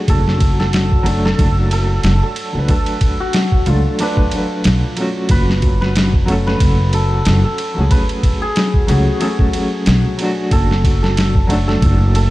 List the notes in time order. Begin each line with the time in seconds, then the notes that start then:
Already playing: F#3 A3 D4 F#4 G#4 B4
0.08 F#1 A4, kick, ride
0.28 snare
0.40 kick, ride
0.59 A4, snare
0.73 snare, ride
0.92 kick
1.03 F#3 A3 D4, ride
1.09 A4
1.25 A4, snare
1.39 F#1, kick, ride
1.71 A4, ride
2.03 F#1, snare, ride
2.23 A4
2.36 ride
2.53 C#2 F#3 A3 D4
2.59 B4
2.68 A4, kick, ride
2.86 ride
3.01 kick, ride
3.20 F#4
3.33 snare, ride
3.52 kick
3.66 C#2 F#3 A3 D4 F4 A4, ride
3.99 F#3 A3 D4 B4, ride
4.17 kick
4.31 F#3 A3 D4 B4, ride
4.64 B1, snare, ride
4.96 F#3 A3, ride
5.00 C#4 F#4
5.29 F#1 B4, kick, ride
5.49 snare
5.62 kick, ride
5.81 B4, snare
5.96 snare, ride
6.13 kick
6.25 F#3 A3, ride
6.30 C#4 A4
6.47 B4, snare
6.60 F#1, kick, ride
6.93 A4, ride
7.25 F#1, snare, ride
7.45 A4
7.58 ride
7.74 C#2 F#3 A3
7.79 C#4 G#4
7.91 B4, kick, ride
8.09 ride
8.23 kick, ride
8.42 G#4
8.56 snare, ride
8.74 kick
8.87 C#2 F#3 A3 C#4 F#4 G#4, ride
9.20 F#3 A3 C#4 G#4 A4, ride
9.39 kick
9.53 F#3 A3 C#4 G#4, ride
9.86 B1, snare, ride
10.17 F#3 A3, ride
10.22 D4 F#4
10.51 F#1 A4, kick, ride
10.71 snare
10.84 kick, ride
11.03 A4, snare
11.17 snare, ride
11.35 kick
11.47 F#3 A3, ride
11.51 D4 A4
11.68 A4, snare
11.82 F#1, kick, ride
12.15 A4, ride